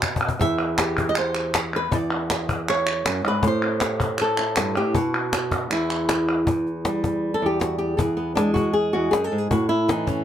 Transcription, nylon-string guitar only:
0.00 0.38 B2 medium
0.00 0.41 B4 medium
0.39 1.90 E2 medium
0.39 1.09 E5 loud
0.79 1.73 G4 soft
1.09 1.16 D#5 medium
1.18 1.55 C5 loud
1.76 1.93 B4 loud
1.91 3.05 E2 medium
1.91 2.69 D5 loud
2.70 3.45 C#5 loud
3.07 3.25 F#2 medium
3.25 3.44 G#2 medium
3.25 3.45 B4 medium
3.43 4.75 A2 medium
3.47 4.59 C5 loud
3.82 4.20 G4 medium
4.21 4.77 A4 loud
4.39 4.93 E4 medium
4.57 4.76 G2 medium
4.76 4.95 A2 medium
4.76 4.97 G4 medium
4.94 5.68 B2 medium
4.94 5.72 F#4 medium
5.71 6.46 E2 medium
5.71 6.48 E4 medium
6.48 7.41 E2 medium
6.85 7.97 G3 medium
7.34 7.48 A4 medium
7.42 7.98 E2 medium
7.42 7.59 G4 medium
7.59 7.78 F#4 medium
7.78 7.98 G4 medium
7.97 8.93 E2 medium
7.97 8.17 G#4 medium
8.17 8.35 B3 medium
8.35 9.49 G#3 medium
8.35 8.53 D4 medium
8.54 8.74 F#4 medium
8.73 8.93 G#4 medium
8.93 9.12 E2 medium
8.93 9.12 F#4 medium
9.11 9.31 F#2 medium
9.11 9.24 G#4 medium
9.24 9.38 A4 medium
9.32 9.50 G#2 medium
9.38 9.50 G#4 medium
9.51 10.24 A2 medium
9.51 9.69 F#4 medium
9.69 9.88 E4 loud
9.88 10.24 E3 medium
9.88 10.07 D#4 medium
10.07 10.24 C#4 medium

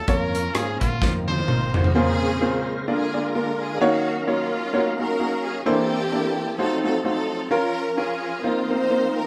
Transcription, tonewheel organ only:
0.08 0.99 F3 medium
0.08 1.00 A#3 soft
0.08 1.00 C#4 medium
0.08 1.00 A#4 medium
1.01 1.93 F3 medium
1.01 1.93 C4 soft
1.01 1.93 D#4 medium
1.01 1.93 A#4 medium
1.95 2.86 C#3 medium
1.95 2.86 G#3 medium
1.95 2.86 F4 medium
1.95 2.86 A#4 medium
1.95 2.86 C5 medium
2.88 3.79 D3 medium
2.88 3.79 G#3 medium
2.88 3.79 A#3 medium
2.88 3.79 D4 medium
2.88 3.79 F4 medium
2.88 3.79 A#4 medium
3.80 5.62 F#3 medium
3.80 5.62 C#4 medium
3.80 5.63 D#4 medium
3.80 5.63 A#4 medium
3.80 5.62 F5 medium
5.66 5.72 D#3 medium
5.66 6.57 A#3 medium
5.66 6.57 C4 medium
5.66 6.57 D4 medium
5.66 6.57 A4 medium
5.71 6.60 E3 medium
6.58 7.49 F3 medium
6.58 7.49 F#3 medium
6.58 7.49 C4 medium
6.58 7.49 D#4 medium
6.58 6.65 G#4 medium
6.64 7.52 A4 medium
7.51 8.42 F3 medium
7.51 8.42 C#4 medium
7.51 8.42 F4 medium
7.51 8.42 A#4 medium
8.43 9.27 F3 medium
8.43 9.27 A#3 medium
8.43 9.27 C4 medium
8.43 9.27 D#4 medium
8.43 9.27 A#4 medium

